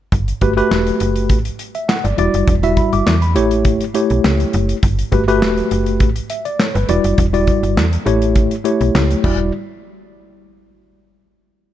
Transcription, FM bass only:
0.12 G1
0.42 G1
0.71 E1
1.01 F#1
1.30 A1
2.05 G1
2.18 E1
2.34 F#1
2.48 E1
2.93 G1
3.07 E2
3.36 A1
4.11 B1
4.25 C#2
4.54 F#1
4.83 G1
5.12 G1
5.42 E1
5.72 F#1
6.00 A1
6.75 G1
6.89 E1
7.05 F#1
7.18 E1
7.63 G1
7.77 E2
8.06 A1
8.81 B1
8.95 C#2
9.24 E1

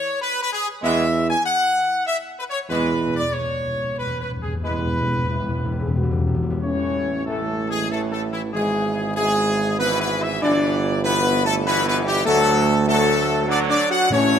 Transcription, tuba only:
0.83 E2
2.69 E2
4.64 E2
6.63 A1
8.52 G#1
10.43 G1
12.27 D2
14.12 A1

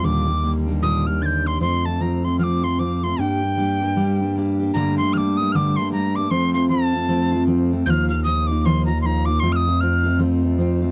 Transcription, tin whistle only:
0.05 D6
0.83 D#6
1.07 F6
1.22 G6 A6
1.47 C6
1.61 C6
1.85 A5
2.01 A#5
2.25 C6
2.39 F6
2.44 D6
2.64 C6
2.79 D6
2.97 D6
3.04 C6
3.20 G5
4.74 A#5
4.98 C6
5.13 F6
5.17 D6
5.37 D#6
5.52 D6 F6
5.76 C6
5.92 A#5
6.16 D6
6.31 C6
6.54 C6
6.69 A5
7.86 G6
7.90 F6
8.09 F6
8.24 D#6
8.47 D6
8.61 D6
8.66 C6
8.86 A#5
9.02 C6
9.06 A#5
9.25 D6
9.40 C6
9.52 D#6 F6
9.80 F6

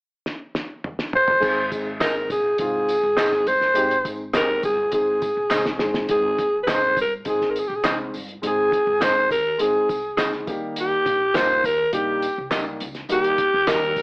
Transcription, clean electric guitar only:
2.00 G#4 C5 D#5
3.17 G#4 C5 D#5
4.33 G#4 C5 D#5
5.50 G#4 C5 D#5
6.67 G#4 C5 D#5
7.84 G#4 C5 D#5
9.01 G#4 C5 D#5
10.17 G#4 C5 D#5
11.34 G4 A#4 D#5
12.51 G4 A#4 D#5
13.67 G4 A#4 D#5

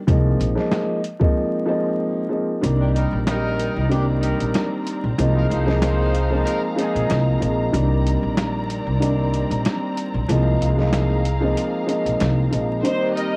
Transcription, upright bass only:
0.08 C2
0.40 A#1
2.63 C2
3.12 A#1
3.76 C2
4.40 A#1
5.04 A#1
5.18 C2
5.50 C2
6.95 A#1
7.10 C2
7.42 A#1
7.73 C2
8.23 A#1
8.87 C2
9.51 A#1
10.14 A#1
10.29 C2
10.61 C2
12.06 A#1
12.20 C2
12.52 A#1

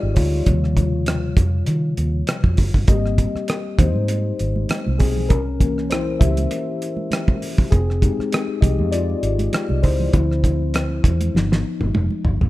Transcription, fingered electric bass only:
0.03 G#1
0.17 D2
0.47 D#2
1.37 F2
1.68 D#3
1.98 D#2
2.44 F2
2.58 F#1
2.74 G1
2.88 G#1
3.35 muted fingered electric bass stroke
3.79 D#2
3.96 G#2
4.40 G#1
4.87 C2
5.00 B1
5.31 C2
6.21 C#2
7.72 F1
8.19 muted fingered electric bass stroke
8.62 C2
8.78 F2
9.23 G#1
9.70 C2
9.84 C#2
10.14 D2
11.04 E2
11.35 G1
11.51 G#1
11.82 G1
11.95 F1
12.25 G1
12.42 F1

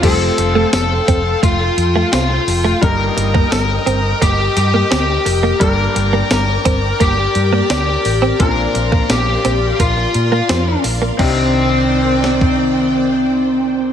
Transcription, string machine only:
0.03 A4 F5 G5 C6
2.82 A#4 D#5 D#6
5.62 D5 D6
8.40 F5 C6
11.19 D#3 C5 D5 G5

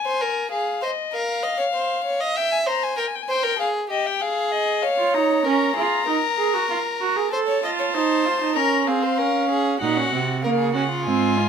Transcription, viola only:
4.99 F4
5.14 D#4
5.46 C#4
5.76 F4
6.07 D#4
6.37 G#4
6.54 F#4
6.70 F4
7.01 F#4
7.17 G#4
7.32 A4
7.64 F4
7.95 D#4
8.25 F4
8.41 D#4
8.56 C#4
8.88 C4
9.19 C#4
9.81 D#4
9.97 C#4
10.12 C4
10.43 A#3
10.75 C#4
11.06 C4
11.37 F4

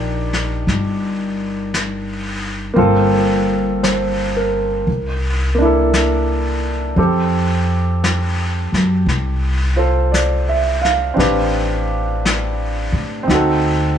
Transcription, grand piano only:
Already playing: D4 D#4 G4 A#4
2.74 A#3 C4 F4
2.78 A4
3.83 C5
4.36 A#4
5.55 A#3 D4
5.61 E4
5.65 A4
6.98 C4 G4 A4
9.76 F4 A4 C5
10.12 D5
10.49 E5
10.82 F5
11.14 C4 D4 G4
11.19 B4
13.23 C4
13.27 D#4 F#4
13.34 A4

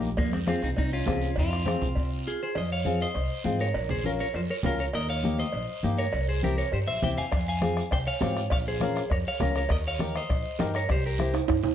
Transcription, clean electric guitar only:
0.18 F3 A#3
0.33 G#3 C4
0.48 C4 F4
0.63 C4 D#4
0.78 C4 D#4
0.93 C#4 F4
1.39 C4 F4
2.27 F4 G#4
2.43 G#4 C5
2.57 C5 D#5
2.72 C#5 F5
3.02 C5 D#5
3.61 A#4 C#5
3.90 G#4 C5
4.06 F4 A#4
4.20 A#4 C#5
4.36 F4 C5
4.50 A#4 C#5
4.66 F4 A#4
4.80 A#4 C#5
4.95 A#4 D#5
5.09 C#5 F5
5.39 C5 D#5
5.99 A#4 C#5
6.28 G#4 C5
6.44 G4 A#4
6.58 A#4 C#5
6.73 G4 C5
6.88 C5 E5
7.03 E5 G5
7.18 F5 G#5
7.48 F5 G#5
7.92 C5 G5
8.07 C#5 F5
8.52 C#5 F5
8.68 G#4 C5
9.12 A#4 C#5
9.28 C#5 F5
9.42 F4 A#4
9.57 A#4 C#5
9.72 A#4 D#5
9.87 C#5 F5
10.16 C5 D#5
10.76 A#4 C#5
10.91 G4 C5
11.06 G4 A#4

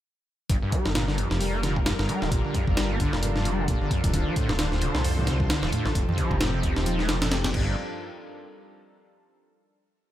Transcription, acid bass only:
0.49 G2
0.62 G2
0.72 G3
0.85 D3
0.94 A#2
1.08 D3
1.17 F2
1.30 F2
1.40 G3
1.53 A#3
1.63 D3
1.76 G2
1.86 G2
1.99 G2
2.09 G3
2.22 D3
2.31 A#2
2.45 D3
2.54 F2
2.68 F2
2.77 G3
2.90 A#3
3.00 D3
3.13 G2
3.23 G2
3.36 G2
3.46 G3
3.59 D3
3.68 A#2
3.81 D3
3.91 F2
4.04 F2
4.14 D3
4.27 F3
4.37 A2
4.50 D2
4.59 D2
4.72 D2
4.82 D3
4.95 A2
5.04 F2
5.18 A2
5.27 C2
5.40 C2
5.50 D3
5.63 F3
5.72 A2
5.86 D2
5.95 F2
6.08 F2
6.18 F3
6.31 C3
6.41 A2
6.54 C3
6.64 D#2
6.77 D#2
6.86 F3
6.99 A3
7.09 A#2
7.22 A#2
7.32 F3
7.45 F2
7.55 G2

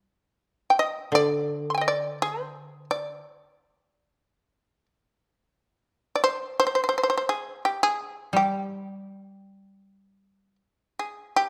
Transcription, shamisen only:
0.70 G5
0.79 D#5
1.15 D5
1.70 C6
1.74 G5 G#5
1.81 D#5
1.88 D5
2.22 C5
2.91 D5
6.15 D5
6.24 C5
6.60 C5
6.67 C5
6.75 C5
6.84 C5
6.89 C5
6.98 C5
7.03 C5
7.10 C5
7.17 C5
7.29 G#4
7.65 G4
7.83 G#4
8.36 G4
10.99 G#4
11.36 G4

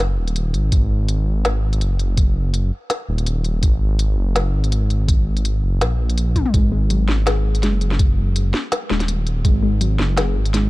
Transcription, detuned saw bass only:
Already playing: F#1
0.17 D#1
0.54 G#1
0.72 G#1
1.81 F#1
3.08 D#1
3.63 G#1
4.17 F#1
4.54 G#1
5.63 F#1
5.81 A#1
6.54 G#1
7.63 F#1
8.90 D#1
9.45 G#1
9.99 F#1
10.36 G#1

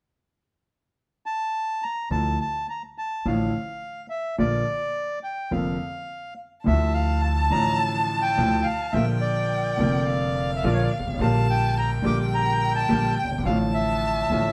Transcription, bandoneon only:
1.26 A5
1.83 A#5
2.11 A5
2.41 A5
2.70 A#5
2.98 A5
3.27 F5
4.10 E5
4.39 D5
5.23 G5
5.52 F5
6.67 E5
6.94 F5
7.22 A5
7.51 A#5
7.78 A5
8.22 G5
8.64 F5
8.92 E5
9.21 D5
10.56 E5
10.66 D5
10.73 C#5
10.83 D5
11.22 F5
11.50 G5
11.78 A#5
12.06 D6
12.34 A#5
12.75 A5
13.19 G5
13.45 F5
13.74 E5

